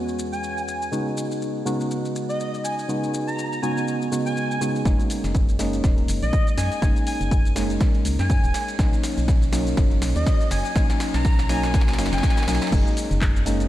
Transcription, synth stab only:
Already playing: E2 G#3 B3 C#4 F#4
0.91 C#3 G#3 B3 D#4 F#4
1.65 C#3 G#3 B3 D#4 F#4
2.88 C#3 G#3 B3 D#4 F#4
3.62 C#3 G#3 B3 D#4 F#4
4.11 C#3 G#3 B3 D#4 F#4
4.61 C#3 G#3 B3 D#4 F#4
4.85 G#3 A#3 C#4 D#4
5.59 G#3 A#3 C#4 D#4
6.82 G#3 A#3 C#4 D#4
7.55 G#3 A#3 C#4 D#4
8.78 F#3 A#3 C#4 D#4
9.52 F#3 A#3 C#4 D#4
10.75 F#3 A#3 C#4 D#4
11.49 F#3 A#3 C#4 D#4
11.98 F#3 A#3 C#4 D#4
12.47 F#3 A#3 C#4 D#4
12.72 G#3 A#3 C#4 D#4
13.46 G#3 A#3 C#4 D#4

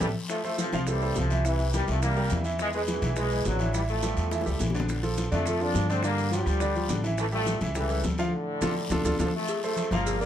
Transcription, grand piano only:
0.00 E4 G4 A4
0.44 A3 A4 C5
0.73 F3 F4 F5
0.87 A3 A4 C5
1.02 A3 A4 C5
1.31 E3 E4 E5
1.45 E3 E4 E5
1.74 G3 G4 A#4
2.02 E3 E4 E5
2.17 G3 G4 A#4
2.31 E3 E4 E5
2.45 E3 E4 E5
2.74 G#3 G#4 B4
3.02 E3 E4 E5
3.16 G#3 G#4 B4
3.31 G#3 G#4 B4
3.60 E3 E4 E5
3.73 E3 E4 E5
4.03 G3 G4 A4
4.32 E3 E4 E5
4.46 G3 G4 A4
4.60 E3 E4 E5
4.75 D3 D4 D5
5.03 F3 F4 A4
5.31 D3 D4 D5
5.46 F3 F4 A4
5.60 F3 F4 A4
5.89 D3 D4 D5
6.03 D3 D4 D5
6.33 F3 F4 G4
6.61 D3 D4 D5
6.75 F3 F4 G4
6.89 D3 D4 D5
7.04 E3 E4 E5
7.32 G3 G4 A4
7.62 E3 E4 E5
7.76 G3 G4 A4
7.89 G3 G4 A4
8.19 F3 F4 F5
8.62 D4 F4 A4
8.91 D4 F4 A4
9.05 D4 F4 A4
9.20 D4 F4 A4
9.63 A3 A4 C5
9.92 F3 F4 F5
10.21 A#3 A#4 D5

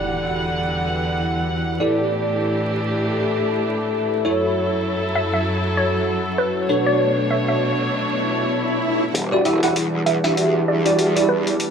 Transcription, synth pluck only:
5.16 E5
5.34 E5
5.77 C#5
6.38 B4
6.86 D5
7.31 E5
7.48 E5
10.06 E5
10.24 E5
10.68 D5
11.29 B4

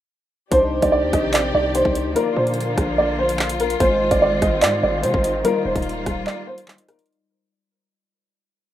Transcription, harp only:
0.51 D4 D#4 C5
1.53 D4 D#4 G4
2.14 A#3 F4 D5
3.80 G#3 F4 C5
5.03 G#3 F4 C5
5.43 G3 D#4 F4
6.67 G3 D#4 F4

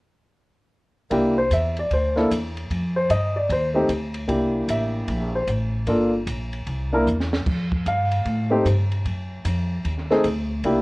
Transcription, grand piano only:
1.11 A#3 D4 E4 G4
1.38 C5
1.53 E5
1.79 D5
1.93 C5
2.16 A#3 D4 E4 A4
2.96 C5
3.11 D#5
3.36 D5
3.52 C5
3.74 A3 C4 D#4 G4
4.28 A#3 D4 E4 G4
4.70 E5
5.35 C5
5.87 A#3 D4 F4 A4
6.92 A#3 D4 E4 A#4
7.88 F5
8.51 A3 C4 D#4 G4 C5
10.11 A3 C4 D#4 G#4
10.64 A#3 D4 E4 G4

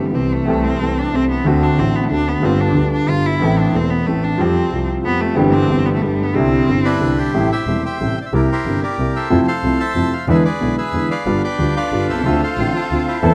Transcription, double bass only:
Already playing: G1
0.15 C2
0.48 C2
0.81 C2
1.13 C2
1.46 D2
1.78 A1
2.10 D2
2.43 G1
2.75 D2
3.08 G1
3.41 A1
3.74 E1
4.08 A1
4.39 F2
4.72 C2
5.05 F2
5.38 G1
5.70 G1
6.03 G1
6.35 C2
6.67 G1
7.00 C2
7.34 A1
7.67 E1
8.01 A1
8.33 C2
8.65 G1
8.99 C2
9.31 F2
9.63 C2
9.95 F2
10.27 E2
10.61 B1
10.93 E2
11.26 G1
11.59 D2
11.92 G1
12.09 C2
12.26 D2
12.58 A1
12.91 D2
13.23 E2

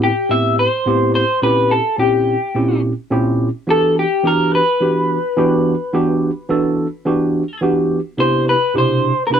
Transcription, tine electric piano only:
Already playing: E4 G4
0.29 A2 B3 C4 E4 G4
0.86 A2 B3 C4 E4 G4
1.42 A#2 C4 C#4 E4 G4
1.98 A#2 C4 C#4 E4 G4
2.54 A#2 C4 C#4 E4 G4
3.10 A#2 C4 C#4 E4 G4
3.67 E3 B3 D4 F#4 G4
4.23 E3 B3 D4 F#4 G4
4.80 E3 B3 D4 F#4 G4
5.37 E3 B3 D4 F#4 G4
5.93 E3 B3 D4 F#4 G4
6.49 E3 B3 D4 F#4 A4
7.05 E3 B3 D4 F#4 G4
7.61 E3 B3 D4 F#4 G4
8.17 C3 B3 D4 E4 G4
8.74 B2 C3 D4 E4 G4
9.30 C3 B3 D4 E4 G4

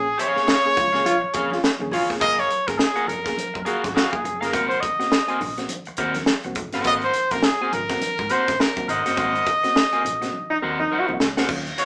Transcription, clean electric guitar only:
0.18 G#4 C#5 F5
0.47 G#4 C#5 F5
0.76 muted clean electric guitar stroke
0.93 G#4 C#5 F5
1.05 muted clean electric guitar stroke
1.21 muted clean electric guitar stroke
1.34 G#4 C#5 F5
1.51 muted clean electric guitar stroke
1.80 muted clean electric guitar stroke
1.92 G#4 C#5 F5
2.10 muted clean electric guitar stroke
2.20 G#4 A#4 F5
2.67 muted clean electric guitar stroke
2.79 muted clean electric guitar stroke
2.96 G#4 A#4 F#5
3.07 muted clean electric guitar stroke
3.24 muted clean electric guitar stroke
3.54 muted clean electric guitar stroke
3.65 G#4 A#4 F5
3.84 muted clean electric guitar stroke
3.95 G#4 A#4 F5
4.24 muted clean electric guitar stroke
4.41 G#4 A#4 F5
4.53 A#4 C5 F#5
5.00 muted clean electric guitar stroke
5.12 muted clean electric guitar stroke
5.28 A#4 C5 G#5
5.41 muted clean electric guitar stroke
5.58 muted clean electric guitar stroke
5.87 muted clean electric guitar stroke
5.98 A#4 C5 F#5
6.16 muted clean electric guitar stroke
6.27 muted clean electric guitar stroke
6.45 muted clean electric guitar stroke
6.74 A#4 C5 F#5
6.85 A4 B4 F5
6.96 A#4 C5 F#5
7.32 muted clean electric guitar stroke
7.44 muted clean electric guitar stroke
7.62 A#4 C5 G#5
7.73 muted clean electric guitar stroke
7.91 muted clean electric guitar stroke
8.19 muted clean electric guitar stroke
8.31 A#4 C5 F#5
8.49 muted clean electric guitar stroke
8.60 muted clean electric guitar stroke
8.77 muted clean electric guitar stroke
8.88 A#4 C5 F#5
9.06 A#4 C5 F#5
9.17 A#4 C5 F#5
9.63 muted clean electric guitar stroke
9.75 muted clean electric guitar stroke
9.93 A#4 C5 G#5
10.04 muted clean electric guitar stroke
10.22 muted clean electric guitar stroke
10.51 muted clean electric guitar stroke
10.62 A#4 C5 F#5
10.81 muted clean electric guitar stroke
10.92 A#4 C5 F#5
11.20 muted clean electric guitar stroke
11.37 A#4 C5 F#5
11.78 F#4 C#5 F5

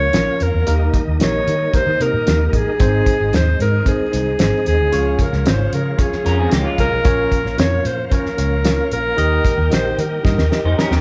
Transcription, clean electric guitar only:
6.26 C#4 A#4
6.39 C4 G#4
6.52 A#3 G4
6.65 G#3 F4
10.65 D#4 C5
10.78 C#4 A#4
10.92 A#3 G4

